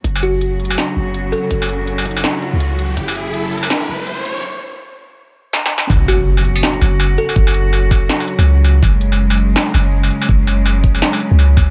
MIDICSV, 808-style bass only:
0, 0, Header, 1, 2, 480
1, 0, Start_track
1, 0, Tempo, 365854
1, 60, Time_signature, 4, 2, 24, 8
1, 15356, End_track
2, 0, Start_track
2, 0, Title_t, "808-style bass"
2, 0, Program_c, 0, 38
2, 56, Note_on_c, 0, 30, 95
2, 1006, Note_off_c, 0, 30, 0
2, 1262, Note_on_c, 0, 30, 79
2, 1729, Note_off_c, 0, 30, 0
2, 1977, Note_on_c, 0, 30, 94
2, 2926, Note_off_c, 0, 30, 0
2, 3320, Note_on_c, 0, 37, 96
2, 3887, Note_off_c, 0, 37, 0
2, 3897, Note_on_c, 0, 30, 98
2, 4846, Note_off_c, 0, 30, 0
2, 5099, Note_on_c, 0, 30, 82
2, 5567, Note_off_c, 0, 30, 0
2, 7739, Note_on_c, 0, 30, 95
2, 8687, Note_off_c, 0, 30, 0
2, 8938, Note_on_c, 0, 30, 83
2, 9407, Note_off_c, 0, 30, 0
2, 9659, Note_on_c, 0, 30, 97
2, 10607, Note_off_c, 0, 30, 0
2, 11000, Note_on_c, 0, 37, 98
2, 11567, Note_off_c, 0, 37, 0
2, 11581, Note_on_c, 0, 30, 98
2, 12528, Note_off_c, 0, 30, 0
2, 12780, Note_on_c, 0, 30, 79
2, 13247, Note_off_c, 0, 30, 0
2, 13500, Note_on_c, 0, 30, 98
2, 14447, Note_off_c, 0, 30, 0
2, 14840, Note_on_c, 0, 37, 100
2, 15172, Note_off_c, 0, 37, 0
2, 15180, Note_on_c, 0, 37, 82
2, 15356, Note_off_c, 0, 37, 0
2, 15356, End_track
0, 0, End_of_file